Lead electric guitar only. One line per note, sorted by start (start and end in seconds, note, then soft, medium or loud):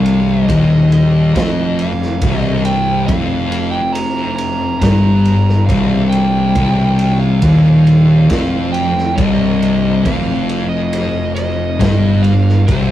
0.00 0.29 F5 loud
0.30 0.89 D#5 medium
0.93 1.81 D#5 loud
1.79 2.38 F5 loud
2.38 2.61 D#5 loud
2.65 3.05 G5 loud
3.06 3.71 F5 loud
3.71 3.94 G5 medium
3.93 4.35 A#5 loud
4.36 4.79 A#5 loud
4.80 5.70 A#5 medium
5.66 6.09 F5 loud
6.09 7.19 G5 loud
7.19 7.83 F5 medium
7.84 8.72 F5 loud
8.72 9.18 G5 medium
9.16 10.03 D#5 medium
10.03 10.68 F5 loud
10.69 11.31 D#5 medium
11.35 12.22 D#5 loud
12.23 12.68 F5 medium
12.66 12.91 C5 medium